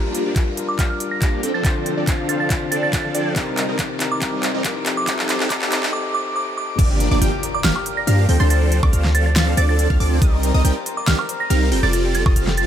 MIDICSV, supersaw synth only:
0, 0, Header, 1, 2, 480
1, 0, Start_track
1, 0, Key_signature, -2, "minor"
1, 0, Tempo, 428571
1, 1844, Time_signature, 4, 2, 24, 8
1, 14186, End_track
2, 0, Start_track
2, 0, Title_t, "Supersaw synth"
2, 0, Program_c, 0, 81
2, 0, Note_on_c, 0, 53, 74
2, 0, Note_on_c, 0, 58, 69
2, 0, Note_on_c, 0, 62, 69
2, 0, Note_on_c, 0, 67, 67
2, 0, Note_on_c, 0, 74, 82
2, 260, Note_off_c, 0, 53, 0
2, 260, Note_off_c, 0, 58, 0
2, 260, Note_off_c, 0, 62, 0
2, 260, Note_off_c, 0, 67, 0
2, 260, Note_off_c, 0, 74, 0
2, 290, Note_on_c, 0, 58, 70
2, 290, Note_on_c, 0, 62, 76
2, 291, Note_on_c, 0, 53, 82
2, 291, Note_on_c, 0, 67, 74
2, 291, Note_on_c, 0, 74, 89
2, 376, Note_off_c, 0, 53, 0
2, 376, Note_off_c, 0, 58, 0
2, 376, Note_off_c, 0, 62, 0
2, 376, Note_off_c, 0, 74, 0
2, 377, Note_off_c, 0, 67, 0
2, 403, Note_on_c, 0, 79, 88
2, 404, Note_on_c, 0, 53, 78
2, 404, Note_on_c, 0, 58, 71
2, 404, Note_on_c, 0, 62, 71
2, 404, Note_on_c, 0, 67, 72
2, 506, Note_off_c, 0, 53, 0
2, 506, Note_off_c, 0, 58, 0
2, 506, Note_off_c, 0, 62, 0
2, 506, Note_off_c, 0, 67, 0
2, 506, Note_off_c, 0, 79, 0
2, 882, Note_on_c, 0, 53, 75
2, 882, Note_on_c, 0, 58, 70
2, 882, Note_on_c, 0, 67, 71
2, 883, Note_on_c, 0, 62, 73
2, 883, Note_on_c, 0, 77, 90
2, 986, Note_off_c, 0, 53, 0
2, 986, Note_off_c, 0, 58, 0
2, 986, Note_off_c, 0, 62, 0
2, 986, Note_off_c, 0, 67, 0
2, 986, Note_off_c, 0, 77, 0
2, 1363, Note_on_c, 0, 53, 96
2, 1363, Note_on_c, 0, 58, 89
2, 1363, Note_on_c, 0, 62, 91
2, 1363, Note_on_c, 0, 77, 105
2, 1364, Note_on_c, 0, 67, 87
2, 1576, Note_off_c, 0, 53, 0
2, 1576, Note_off_c, 0, 58, 0
2, 1576, Note_off_c, 0, 62, 0
2, 1576, Note_off_c, 0, 67, 0
2, 1576, Note_off_c, 0, 77, 0
2, 1602, Note_on_c, 0, 53, 81
2, 1602, Note_on_c, 0, 62, 75
2, 1603, Note_on_c, 0, 60, 72
2, 1603, Note_on_c, 0, 69, 75
2, 1603, Note_on_c, 0, 79, 89
2, 1699, Note_off_c, 0, 62, 0
2, 1700, Note_off_c, 0, 53, 0
2, 1700, Note_off_c, 0, 60, 0
2, 1700, Note_off_c, 0, 69, 0
2, 1700, Note_off_c, 0, 79, 0
2, 1729, Note_on_c, 0, 53, 84
2, 1729, Note_on_c, 0, 60, 79
2, 1729, Note_on_c, 0, 62, 80
2, 1729, Note_on_c, 0, 69, 80
2, 1729, Note_on_c, 0, 72, 94
2, 2179, Note_off_c, 0, 53, 0
2, 2179, Note_off_c, 0, 60, 0
2, 2179, Note_off_c, 0, 62, 0
2, 2179, Note_off_c, 0, 69, 0
2, 2179, Note_off_c, 0, 72, 0
2, 2210, Note_on_c, 0, 60, 81
2, 2210, Note_on_c, 0, 62, 78
2, 2210, Note_on_c, 0, 74, 93
2, 2211, Note_on_c, 0, 53, 83
2, 2211, Note_on_c, 0, 69, 78
2, 2296, Note_off_c, 0, 53, 0
2, 2296, Note_off_c, 0, 60, 0
2, 2296, Note_off_c, 0, 62, 0
2, 2296, Note_off_c, 0, 69, 0
2, 2296, Note_off_c, 0, 74, 0
2, 2322, Note_on_c, 0, 53, 92
2, 2322, Note_on_c, 0, 60, 83
2, 2322, Note_on_c, 0, 62, 83
2, 2322, Note_on_c, 0, 69, 83
2, 2322, Note_on_c, 0, 77, 99
2, 3015, Note_off_c, 0, 53, 0
2, 3015, Note_off_c, 0, 60, 0
2, 3015, Note_off_c, 0, 69, 0
2, 3015, Note_off_c, 0, 77, 0
2, 3016, Note_off_c, 0, 62, 0
2, 3042, Note_on_c, 0, 53, 97
2, 3042, Note_on_c, 0, 62, 87
2, 3042, Note_on_c, 0, 74, 104
2, 3043, Note_on_c, 0, 60, 88
2, 3043, Note_on_c, 0, 69, 89
2, 3379, Note_off_c, 0, 62, 0
2, 3379, Note_off_c, 0, 74, 0
2, 3380, Note_off_c, 0, 53, 0
2, 3380, Note_off_c, 0, 60, 0
2, 3380, Note_off_c, 0, 69, 0
2, 3411, Note_on_c, 0, 53, 98
2, 3411, Note_on_c, 0, 60, 88
2, 3411, Note_on_c, 0, 62, 86
2, 3411, Note_on_c, 0, 69, 86
2, 3411, Note_on_c, 0, 77, 106
2, 3496, Note_off_c, 0, 53, 0
2, 3496, Note_off_c, 0, 62, 0
2, 3496, Note_off_c, 0, 77, 0
2, 3497, Note_off_c, 0, 60, 0
2, 3497, Note_off_c, 0, 69, 0
2, 3523, Note_on_c, 0, 53, 104
2, 3523, Note_on_c, 0, 60, 89
2, 3523, Note_on_c, 0, 62, 91
2, 3523, Note_on_c, 0, 69, 90
2, 3523, Note_on_c, 0, 74, 108
2, 3736, Note_off_c, 0, 53, 0
2, 3736, Note_off_c, 0, 60, 0
2, 3736, Note_off_c, 0, 62, 0
2, 3736, Note_off_c, 0, 69, 0
2, 3736, Note_off_c, 0, 74, 0
2, 3762, Note_on_c, 0, 63, 62
2, 3763, Note_on_c, 0, 55, 70
2, 3763, Note_on_c, 0, 60, 62
2, 3763, Note_on_c, 0, 70, 64
2, 3763, Note_on_c, 0, 75, 76
2, 4100, Note_off_c, 0, 55, 0
2, 4100, Note_off_c, 0, 60, 0
2, 4100, Note_off_c, 0, 63, 0
2, 4100, Note_off_c, 0, 70, 0
2, 4100, Note_off_c, 0, 75, 0
2, 4129, Note_on_c, 0, 55, 76
2, 4129, Note_on_c, 0, 60, 68
2, 4129, Note_on_c, 0, 70, 71
2, 4129, Note_on_c, 0, 75, 83
2, 4130, Note_on_c, 0, 63, 68
2, 4216, Note_off_c, 0, 55, 0
2, 4216, Note_off_c, 0, 60, 0
2, 4216, Note_off_c, 0, 63, 0
2, 4216, Note_off_c, 0, 70, 0
2, 4216, Note_off_c, 0, 75, 0
2, 4242, Note_on_c, 0, 55, 74
2, 4242, Note_on_c, 0, 60, 67
2, 4242, Note_on_c, 0, 63, 68
2, 4242, Note_on_c, 0, 70, 66
2, 4242, Note_on_c, 0, 79, 85
2, 4345, Note_off_c, 0, 60, 0
2, 4346, Note_off_c, 0, 55, 0
2, 4346, Note_off_c, 0, 63, 0
2, 4346, Note_off_c, 0, 70, 0
2, 4346, Note_off_c, 0, 79, 0
2, 4723, Note_on_c, 0, 63, 65
2, 4724, Note_on_c, 0, 55, 73
2, 4724, Note_on_c, 0, 60, 66
2, 4724, Note_on_c, 0, 70, 65
2, 4724, Note_on_c, 0, 75, 79
2, 5060, Note_off_c, 0, 55, 0
2, 5060, Note_off_c, 0, 60, 0
2, 5060, Note_off_c, 0, 63, 0
2, 5060, Note_off_c, 0, 70, 0
2, 5060, Note_off_c, 0, 75, 0
2, 5090, Note_on_c, 0, 55, 75
2, 5090, Note_on_c, 0, 60, 70
2, 5090, Note_on_c, 0, 63, 71
2, 5090, Note_on_c, 0, 70, 66
2, 5091, Note_on_c, 0, 75, 79
2, 5176, Note_off_c, 0, 55, 0
2, 5176, Note_off_c, 0, 60, 0
2, 5176, Note_off_c, 0, 63, 0
2, 5176, Note_off_c, 0, 70, 0
2, 5176, Note_off_c, 0, 75, 0
2, 5204, Note_on_c, 0, 55, 80
2, 5204, Note_on_c, 0, 60, 75
2, 5204, Note_on_c, 0, 79, 88
2, 5205, Note_on_c, 0, 63, 74
2, 5205, Note_on_c, 0, 70, 72
2, 5307, Note_off_c, 0, 55, 0
2, 5307, Note_off_c, 0, 60, 0
2, 5307, Note_off_c, 0, 63, 0
2, 5307, Note_off_c, 0, 70, 0
2, 5307, Note_off_c, 0, 79, 0
2, 5682, Note_on_c, 0, 75, 83
2, 5683, Note_on_c, 0, 55, 73
2, 5683, Note_on_c, 0, 60, 70
2, 5683, Note_on_c, 0, 63, 68
2, 5683, Note_on_c, 0, 69, 68
2, 6020, Note_off_c, 0, 55, 0
2, 6020, Note_off_c, 0, 60, 0
2, 6020, Note_off_c, 0, 63, 0
2, 6020, Note_off_c, 0, 69, 0
2, 6020, Note_off_c, 0, 75, 0
2, 6050, Note_on_c, 0, 60, 74
2, 6050, Note_on_c, 0, 63, 75
2, 6050, Note_on_c, 0, 69, 72
2, 6051, Note_on_c, 0, 55, 80
2, 6051, Note_on_c, 0, 75, 87
2, 6136, Note_off_c, 0, 55, 0
2, 6136, Note_off_c, 0, 60, 0
2, 6136, Note_off_c, 0, 63, 0
2, 6136, Note_off_c, 0, 69, 0
2, 6136, Note_off_c, 0, 75, 0
2, 6163, Note_on_c, 0, 60, 68
2, 6163, Note_on_c, 0, 63, 65
2, 6163, Note_on_c, 0, 69, 66
2, 6163, Note_on_c, 0, 75, 78
2, 6164, Note_on_c, 0, 55, 71
2, 6500, Note_off_c, 0, 55, 0
2, 6500, Note_off_c, 0, 60, 0
2, 6500, Note_off_c, 0, 63, 0
2, 6500, Note_off_c, 0, 69, 0
2, 6500, Note_off_c, 0, 75, 0
2, 6529, Note_on_c, 0, 55, 80
2, 6529, Note_on_c, 0, 60, 74
2, 6529, Note_on_c, 0, 63, 71
2, 6529, Note_on_c, 0, 69, 72
2, 6529, Note_on_c, 0, 75, 89
2, 6615, Note_off_c, 0, 60, 0
2, 6615, Note_off_c, 0, 63, 0
2, 6615, Note_off_c, 0, 69, 0
2, 6615, Note_off_c, 0, 75, 0
2, 6616, Note_off_c, 0, 55, 0
2, 7602, Note_on_c, 0, 53, 73
2, 7602, Note_on_c, 0, 58, 69
2, 7602, Note_on_c, 0, 62, 69
2, 7602, Note_on_c, 0, 67, 69
2, 7602, Note_on_c, 0, 74, 80
2, 7939, Note_off_c, 0, 53, 0
2, 7939, Note_off_c, 0, 58, 0
2, 7939, Note_off_c, 0, 62, 0
2, 7939, Note_off_c, 0, 67, 0
2, 7939, Note_off_c, 0, 74, 0
2, 7970, Note_on_c, 0, 53, 83
2, 7970, Note_on_c, 0, 58, 76
2, 7970, Note_on_c, 0, 62, 77
2, 7970, Note_on_c, 0, 67, 75
2, 7970, Note_on_c, 0, 74, 90
2, 8056, Note_off_c, 0, 53, 0
2, 8056, Note_off_c, 0, 58, 0
2, 8056, Note_off_c, 0, 62, 0
2, 8056, Note_off_c, 0, 67, 0
2, 8056, Note_off_c, 0, 74, 0
2, 8082, Note_on_c, 0, 67, 73
2, 8083, Note_on_c, 0, 53, 81
2, 8083, Note_on_c, 0, 58, 78
2, 8083, Note_on_c, 0, 62, 76
2, 8083, Note_on_c, 0, 79, 92
2, 8186, Note_off_c, 0, 53, 0
2, 8186, Note_off_c, 0, 58, 0
2, 8186, Note_off_c, 0, 62, 0
2, 8186, Note_off_c, 0, 67, 0
2, 8186, Note_off_c, 0, 79, 0
2, 8562, Note_on_c, 0, 58, 71
2, 8562, Note_on_c, 0, 62, 73
2, 8562, Note_on_c, 0, 67, 75
2, 8562, Note_on_c, 0, 77, 89
2, 8563, Note_on_c, 0, 53, 81
2, 8665, Note_off_c, 0, 67, 0
2, 8666, Note_off_c, 0, 53, 0
2, 8666, Note_off_c, 0, 58, 0
2, 8666, Note_off_c, 0, 62, 0
2, 8666, Note_off_c, 0, 77, 0
2, 9042, Note_on_c, 0, 53, 97
2, 9042, Note_on_c, 0, 58, 90
2, 9042, Note_on_c, 0, 62, 92
2, 9042, Note_on_c, 0, 67, 91
2, 9042, Note_on_c, 0, 77, 109
2, 9255, Note_off_c, 0, 58, 0
2, 9256, Note_off_c, 0, 53, 0
2, 9256, Note_off_c, 0, 62, 0
2, 9256, Note_off_c, 0, 67, 0
2, 9256, Note_off_c, 0, 77, 0
2, 9283, Note_on_c, 0, 53, 83
2, 9283, Note_on_c, 0, 60, 76
2, 9283, Note_on_c, 0, 62, 75
2, 9283, Note_on_c, 0, 69, 77
2, 9283, Note_on_c, 0, 79, 91
2, 9380, Note_off_c, 0, 53, 0
2, 9380, Note_off_c, 0, 60, 0
2, 9380, Note_off_c, 0, 62, 0
2, 9380, Note_off_c, 0, 69, 0
2, 9380, Note_off_c, 0, 79, 0
2, 9410, Note_on_c, 0, 53, 87
2, 9410, Note_on_c, 0, 60, 80
2, 9410, Note_on_c, 0, 62, 83
2, 9410, Note_on_c, 0, 69, 79
2, 9411, Note_on_c, 0, 72, 94
2, 9860, Note_off_c, 0, 53, 0
2, 9860, Note_off_c, 0, 60, 0
2, 9860, Note_off_c, 0, 62, 0
2, 9860, Note_off_c, 0, 69, 0
2, 9860, Note_off_c, 0, 72, 0
2, 9891, Note_on_c, 0, 53, 90
2, 9891, Note_on_c, 0, 60, 80
2, 9891, Note_on_c, 0, 62, 77
2, 9891, Note_on_c, 0, 69, 82
2, 9892, Note_on_c, 0, 74, 97
2, 9977, Note_off_c, 0, 53, 0
2, 9977, Note_off_c, 0, 60, 0
2, 9977, Note_off_c, 0, 62, 0
2, 9977, Note_off_c, 0, 69, 0
2, 9977, Note_off_c, 0, 74, 0
2, 10003, Note_on_c, 0, 53, 93
2, 10003, Note_on_c, 0, 60, 86
2, 10003, Note_on_c, 0, 62, 85
2, 10003, Note_on_c, 0, 69, 82
2, 10004, Note_on_c, 0, 77, 106
2, 10696, Note_off_c, 0, 53, 0
2, 10696, Note_off_c, 0, 60, 0
2, 10696, Note_off_c, 0, 62, 0
2, 10696, Note_off_c, 0, 69, 0
2, 10696, Note_off_c, 0, 77, 0
2, 10723, Note_on_c, 0, 53, 97
2, 10723, Note_on_c, 0, 60, 91
2, 10723, Note_on_c, 0, 62, 89
2, 10723, Note_on_c, 0, 69, 86
2, 10723, Note_on_c, 0, 74, 109
2, 11060, Note_off_c, 0, 53, 0
2, 11060, Note_off_c, 0, 60, 0
2, 11060, Note_off_c, 0, 62, 0
2, 11060, Note_off_c, 0, 69, 0
2, 11060, Note_off_c, 0, 74, 0
2, 11090, Note_on_c, 0, 53, 93
2, 11090, Note_on_c, 0, 60, 86
2, 11090, Note_on_c, 0, 62, 88
2, 11090, Note_on_c, 0, 69, 89
2, 11091, Note_on_c, 0, 77, 108
2, 11176, Note_off_c, 0, 53, 0
2, 11176, Note_off_c, 0, 60, 0
2, 11176, Note_off_c, 0, 62, 0
2, 11176, Note_off_c, 0, 69, 0
2, 11176, Note_off_c, 0, 77, 0
2, 11204, Note_on_c, 0, 53, 98
2, 11204, Note_on_c, 0, 60, 91
2, 11204, Note_on_c, 0, 62, 95
2, 11204, Note_on_c, 0, 69, 92
2, 11204, Note_on_c, 0, 74, 109
2, 11416, Note_off_c, 0, 69, 0
2, 11417, Note_off_c, 0, 53, 0
2, 11417, Note_off_c, 0, 60, 0
2, 11417, Note_off_c, 0, 62, 0
2, 11417, Note_off_c, 0, 74, 0
2, 11444, Note_on_c, 0, 55, 72
2, 11444, Note_on_c, 0, 60, 69
2, 11444, Note_on_c, 0, 63, 71
2, 11444, Note_on_c, 0, 70, 68
2, 11444, Note_on_c, 0, 75, 82
2, 11780, Note_off_c, 0, 60, 0
2, 11780, Note_off_c, 0, 63, 0
2, 11780, Note_off_c, 0, 75, 0
2, 11781, Note_off_c, 0, 55, 0
2, 11781, Note_off_c, 0, 70, 0
2, 11810, Note_on_c, 0, 60, 74
2, 11810, Note_on_c, 0, 75, 93
2, 11811, Note_on_c, 0, 55, 81
2, 11811, Note_on_c, 0, 63, 76
2, 11811, Note_on_c, 0, 70, 73
2, 11896, Note_off_c, 0, 55, 0
2, 11896, Note_off_c, 0, 60, 0
2, 11896, Note_off_c, 0, 63, 0
2, 11896, Note_off_c, 0, 70, 0
2, 11896, Note_off_c, 0, 75, 0
2, 11924, Note_on_c, 0, 55, 82
2, 11924, Note_on_c, 0, 60, 75
2, 11924, Note_on_c, 0, 63, 74
2, 11924, Note_on_c, 0, 70, 76
2, 11924, Note_on_c, 0, 79, 90
2, 12027, Note_off_c, 0, 55, 0
2, 12027, Note_off_c, 0, 60, 0
2, 12027, Note_off_c, 0, 63, 0
2, 12027, Note_off_c, 0, 70, 0
2, 12027, Note_off_c, 0, 79, 0
2, 12402, Note_on_c, 0, 55, 80
2, 12402, Note_on_c, 0, 70, 76
2, 12403, Note_on_c, 0, 60, 73
2, 12403, Note_on_c, 0, 63, 75
2, 12403, Note_on_c, 0, 77, 88
2, 12506, Note_off_c, 0, 55, 0
2, 12506, Note_off_c, 0, 60, 0
2, 12506, Note_off_c, 0, 63, 0
2, 12506, Note_off_c, 0, 70, 0
2, 12506, Note_off_c, 0, 77, 0
2, 12882, Note_on_c, 0, 63, 92
2, 12882, Note_on_c, 0, 77, 108
2, 12883, Note_on_c, 0, 55, 102
2, 12883, Note_on_c, 0, 60, 91
2, 12883, Note_on_c, 0, 70, 91
2, 13096, Note_off_c, 0, 55, 0
2, 13096, Note_off_c, 0, 60, 0
2, 13096, Note_off_c, 0, 63, 0
2, 13096, Note_off_c, 0, 70, 0
2, 13096, Note_off_c, 0, 77, 0
2, 13122, Note_on_c, 0, 55, 84
2, 13122, Note_on_c, 0, 60, 78
2, 13122, Note_on_c, 0, 65, 75
2, 13122, Note_on_c, 0, 69, 73
2, 13122, Note_on_c, 0, 79, 92
2, 13219, Note_off_c, 0, 60, 0
2, 13219, Note_off_c, 0, 65, 0
2, 13219, Note_off_c, 0, 69, 0
2, 13219, Note_off_c, 0, 79, 0
2, 13220, Note_off_c, 0, 55, 0
2, 13251, Note_on_c, 0, 55, 91
2, 13251, Note_on_c, 0, 60, 81
2, 13251, Note_on_c, 0, 65, 80
2, 13251, Note_on_c, 0, 69, 80
2, 13251, Note_on_c, 0, 74, 97
2, 13700, Note_off_c, 0, 55, 0
2, 13700, Note_off_c, 0, 60, 0
2, 13700, Note_off_c, 0, 65, 0
2, 13700, Note_off_c, 0, 69, 0
2, 13701, Note_off_c, 0, 74, 0
2, 13731, Note_on_c, 0, 55, 88
2, 13731, Note_on_c, 0, 65, 81
2, 13731, Note_on_c, 0, 69, 81
2, 13731, Note_on_c, 0, 75, 96
2, 13732, Note_on_c, 0, 60, 78
2, 13817, Note_off_c, 0, 55, 0
2, 13817, Note_off_c, 0, 60, 0
2, 13817, Note_off_c, 0, 65, 0
2, 13817, Note_off_c, 0, 69, 0
2, 13817, Note_off_c, 0, 75, 0
2, 13844, Note_on_c, 0, 65, 83
2, 13845, Note_on_c, 0, 55, 90
2, 13845, Note_on_c, 0, 60, 85
2, 13845, Note_on_c, 0, 69, 89
2, 13845, Note_on_c, 0, 77, 101
2, 14186, Note_off_c, 0, 55, 0
2, 14186, Note_off_c, 0, 60, 0
2, 14186, Note_off_c, 0, 65, 0
2, 14186, Note_off_c, 0, 69, 0
2, 14186, Note_off_c, 0, 77, 0
2, 14186, End_track
0, 0, End_of_file